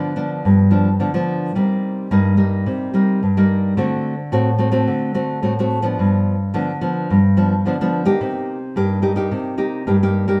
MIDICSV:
0, 0, Header, 1, 2, 480
1, 0, Start_track
1, 0, Key_signature, -3, "minor"
1, 0, Tempo, 554017
1, 1353, Time_signature, 4, 2, 24, 8
1, 9011, End_track
2, 0, Start_track
2, 0, Title_t, "Nylon-string guitar"
2, 0, Program_c, 0, 24
2, 0, Note_on_c, 0, 50, 71
2, 0, Note_on_c, 0, 53, 62
2, 0, Note_on_c, 0, 59, 59
2, 0, Note_on_c, 0, 62, 66
2, 114, Note_off_c, 0, 53, 0
2, 116, Note_off_c, 0, 59, 0
2, 118, Note_off_c, 0, 62, 0
2, 138, Note_on_c, 0, 53, 64
2, 142, Note_on_c, 0, 59, 54
2, 145, Note_on_c, 0, 62, 66
2, 368, Note_off_c, 0, 50, 0
2, 390, Note_on_c, 0, 43, 78
2, 588, Note_off_c, 0, 53, 0
2, 589, Note_off_c, 0, 59, 0
2, 591, Note_off_c, 0, 62, 0
2, 612, Note_on_c, 0, 53, 62
2, 617, Note_on_c, 0, 59, 54
2, 621, Note_on_c, 0, 62, 64
2, 764, Note_off_c, 0, 53, 0
2, 765, Note_off_c, 0, 59, 0
2, 769, Note_off_c, 0, 62, 0
2, 848, Note_off_c, 0, 43, 0
2, 863, Note_on_c, 0, 50, 69
2, 866, Note_on_c, 0, 53, 56
2, 868, Note_on_c, 0, 59, 48
2, 872, Note_on_c, 0, 62, 56
2, 951, Note_off_c, 0, 53, 0
2, 953, Note_off_c, 0, 59, 0
2, 955, Note_off_c, 0, 62, 0
2, 988, Note_on_c, 0, 53, 69
2, 990, Note_on_c, 0, 59, 56
2, 995, Note_on_c, 0, 62, 67
2, 1312, Note_off_c, 0, 53, 0
2, 1314, Note_off_c, 0, 59, 0
2, 1315, Note_off_c, 0, 62, 0
2, 1324, Note_off_c, 0, 50, 0
2, 1345, Note_on_c, 0, 48, 71
2, 1348, Note_on_c, 0, 55, 53
2, 1352, Note_on_c, 0, 58, 58
2, 1353, Note_on_c, 0, 63, 58
2, 1792, Note_off_c, 0, 55, 0
2, 1792, Note_off_c, 0, 58, 0
2, 1795, Note_off_c, 0, 63, 0
2, 1806, Note_off_c, 0, 48, 0
2, 1827, Note_on_c, 0, 55, 64
2, 1829, Note_on_c, 0, 43, 73
2, 1830, Note_on_c, 0, 58, 64
2, 1835, Note_on_c, 0, 63, 71
2, 2032, Note_off_c, 0, 55, 0
2, 2033, Note_off_c, 0, 58, 0
2, 2036, Note_off_c, 0, 63, 0
2, 2054, Note_on_c, 0, 55, 52
2, 2059, Note_on_c, 0, 58, 57
2, 2059, Note_on_c, 0, 63, 62
2, 2287, Note_off_c, 0, 43, 0
2, 2308, Note_on_c, 0, 48, 72
2, 2505, Note_off_c, 0, 55, 0
2, 2506, Note_off_c, 0, 58, 0
2, 2508, Note_off_c, 0, 63, 0
2, 2543, Note_on_c, 0, 55, 54
2, 2547, Note_on_c, 0, 58, 59
2, 2552, Note_on_c, 0, 63, 62
2, 2766, Note_off_c, 0, 48, 0
2, 2773, Note_off_c, 0, 55, 0
2, 2776, Note_off_c, 0, 58, 0
2, 2777, Note_off_c, 0, 63, 0
2, 2796, Note_on_c, 0, 43, 69
2, 2921, Note_on_c, 0, 55, 57
2, 2923, Note_on_c, 0, 58, 69
2, 2926, Note_on_c, 0, 63, 68
2, 3239, Note_off_c, 0, 55, 0
2, 3239, Note_off_c, 0, 58, 0
2, 3241, Note_off_c, 0, 63, 0
2, 3250, Note_off_c, 0, 43, 0
2, 3267, Note_on_c, 0, 50, 68
2, 3267, Note_on_c, 0, 57, 53
2, 3270, Note_on_c, 0, 60, 55
2, 3276, Note_on_c, 0, 66, 67
2, 3579, Note_off_c, 0, 57, 0
2, 3581, Note_off_c, 0, 60, 0
2, 3583, Note_off_c, 0, 66, 0
2, 3726, Note_off_c, 0, 50, 0
2, 3742, Note_on_c, 0, 45, 77
2, 3745, Note_on_c, 0, 57, 65
2, 3748, Note_on_c, 0, 60, 62
2, 3752, Note_on_c, 0, 66, 76
2, 3890, Note_off_c, 0, 57, 0
2, 3890, Note_off_c, 0, 60, 0
2, 3893, Note_off_c, 0, 66, 0
2, 3971, Note_on_c, 0, 57, 59
2, 3976, Note_on_c, 0, 60, 63
2, 3982, Note_on_c, 0, 66, 64
2, 4064, Note_off_c, 0, 57, 0
2, 4066, Note_off_c, 0, 60, 0
2, 4069, Note_off_c, 0, 66, 0
2, 4085, Note_on_c, 0, 57, 69
2, 4092, Note_on_c, 0, 60, 71
2, 4096, Note_on_c, 0, 66, 69
2, 4204, Note_off_c, 0, 45, 0
2, 4223, Note_on_c, 0, 50, 71
2, 4421, Note_off_c, 0, 57, 0
2, 4424, Note_off_c, 0, 60, 0
2, 4426, Note_off_c, 0, 66, 0
2, 4456, Note_on_c, 0, 57, 58
2, 4461, Note_on_c, 0, 60, 54
2, 4462, Note_on_c, 0, 66, 69
2, 4667, Note_off_c, 0, 57, 0
2, 4667, Note_off_c, 0, 60, 0
2, 4669, Note_off_c, 0, 66, 0
2, 4684, Note_off_c, 0, 50, 0
2, 4698, Note_on_c, 0, 45, 68
2, 4702, Note_on_c, 0, 57, 53
2, 4706, Note_on_c, 0, 60, 54
2, 4710, Note_on_c, 0, 66, 64
2, 4788, Note_off_c, 0, 57, 0
2, 4789, Note_off_c, 0, 60, 0
2, 4793, Note_off_c, 0, 66, 0
2, 4843, Note_on_c, 0, 57, 62
2, 4847, Note_on_c, 0, 60, 69
2, 4852, Note_on_c, 0, 66, 65
2, 5040, Note_off_c, 0, 57, 0
2, 5042, Note_off_c, 0, 60, 0
2, 5043, Note_off_c, 0, 66, 0
2, 5045, Note_on_c, 0, 53, 69
2, 5049, Note_on_c, 0, 59, 68
2, 5056, Note_on_c, 0, 62, 67
2, 5162, Note_off_c, 0, 45, 0
2, 5191, Note_on_c, 0, 43, 71
2, 5501, Note_off_c, 0, 53, 0
2, 5502, Note_off_c, 0, 59, 0
2, 5506, Note_off_c, 0, 62, 0
2, 5648, Note_off_c, 0, 43, 0
2, 5664, Note_on_c, 0, 53, 63
2, 5668, Note_on_c, 0, 50, 76
2, 5669, Note_on_c, 0, 59, 60
2, 5672, Note_on_c, 0, 62, 64
2, 5810, Note_off_c, 0, 53, 0
2, 5812, Note_off_c, 0, 59, 0
2, 5813, Note_off_c, 0, 62, 0
2, 5903, Note_on_c, 0, 53, 59
2, 5904, Note_on_c, 0, 59, 62
2, 5909, Note_on_c, 0, 62, 56
2, 6127, Note_off_c, 0, 50, 0
2, 6155, Note_on_c, 0, 43, 74
2, 6217, Note_off_c, 0, 53, 0
2, 6217, Note_off_c, 0, 59, 0
2, 6220, Note_off_c, 0, 62, 0
2, 6384, Note_on_c, 0, 53, 62
2, 6388, Note_on_c, 0, 59, 63
2, 6391, Note_on_c, 0, 62, 65
2, 6530, Note_off_c, 0, 53, 0
2, 6530, Note_off_c, 0, 59, 0
2, 6534, Note_off_c, 0, 62, 0
2, 6610, Note_off_c, 0, 43, 0
2, 6632, Note_on_c, 0, 50, 73
2, 6637, Note_on_c, 0, 53, 56
2, 6642, Note_on_c, 0, 59, 58
2, 6644, Note_on_c, 0, 62, 62
2, 6716, Note_off_c, 0, 53, 0
2, 6717, Note_off_c, 0, 59, 0
2, 6720, Note_off_c, 0, 62, 0
2, 6766, Note_on_c, 0, 53, 72
2, 6770, Note_on_c, 0, 59, 65
2, 6770, Note_on_c, 0, 62, 70
2, 6962, Note_off_c, 0, 53, 0
2, 6963, Note_off_c, 0, 59, 0
2, 6964, Note_off_c, 0, 62, 0
2, 6977, Note_on_c, 0, 58, 68
2, 6981, Note_on_c, 0, 63, 70
2, 6985, Note_on_c, 0, 67, 81
2, 7090, Note_off_c, 0, 50, 0
2, 7111, Note_on_c, 0, 48, 78
2, 7428, Note_off_c, 0, 58, 0
2, 7428, Note_off_c, 0, 63, 0
2, 7431, Note_off_c, 0, 67, 0
2, 7569, Note_off_c, 0, 48, 0
2, 7588, Note_on_c, 0, 43, 74
2, 7594, Note_on_c, 0, 58, 57
2, 7595, Note_on_c, 0, 63, 60
2, 7597, Note_on_c, 0, 67, 69
2, 7795, Note_off_c, 0, 58, 0
2, 7795, Note_off_c, 0, 63, 0
2, 7797, Note_off_c, 0, 67, 0
2, 7815, Note_on_c, 0, 58, 58
2, 7819, Note_on_c, 0, 63, 53
2, 7820, Note_on_c, 0, 67, 64
2, 7897, Note_off_c, 0, 58, 0
2, 7898, Note_off_c, 0, 67, 0
2, 7899, Note_off_c, 0, 63, 0
2, 7934, Note_on_c, 0, 58, 73
2, 7937, Note_on_c, 0, 63, 68
2, 7944, Note_on_c, 0, 67, 70
2, 8049, Note_off_c, 0, 43, 0
2, 8069, Note_on_c, 0, 48, 75
2, 8267, Note_off_c, 0, 58, 0
2, 8267, Note_off_c, 0, 63, 0
2, 8268, Note_off_c, 0, 67, 0
2, 8296, Note_on_c, 0, 58, 57
2, 8299, Note_on_c, 0, 63, 63
2, 8302, Note_on_c, 0, 67, 60
2, 8507, Note_off_c, 0, 63, 0
2, 8508, Note_off_c, 0, 58, 0
2, 8511, Note_off_c, 0, 67, 0
2, 8529, Note_off_c, 0, 48, 0
2, 8549, Note_on_c, 0, 58, 54
2, 8550, Note_on_c, 0, 43, 74
2, 8554, Note_on_c, 0, 63, 52
2, 8558, Note_on_c, 0, 67, 61
2, 8624, Note_off_c, 0, 58, 0
2, 8627, Note_off_c, 0, 63, 0
2, 8628, Note_off_c, 0, 67, 0
2, 8688, Note_on_c, 0, 58, 65
2, 8689, Note_on_c, 0, 63, 61
2, 8692, Note_on_c, 0, 67, 75
2, 8884, Note_off_c, 0, 58, 0
2, 8884, Note_off_c, 0, 63, 0
2, 8885, Note_off_c, 0, 67, 0
2, 8904, Note_on_c, 0, 58, 67
2, 8908, Note_on_c, 0, 63, 65
2, 8913, Note_on_c, 0, 67, 68
2, 9010, Note_off_c, 0, 43, 0
2, 9011, Note_off_c, 0, 58, 0
2, 9011, Note_off_c, 0, 63, 0
2, 9011, Note_off_c, 0, 67, 0
2, 9011, End_track
0, 0, End_of_file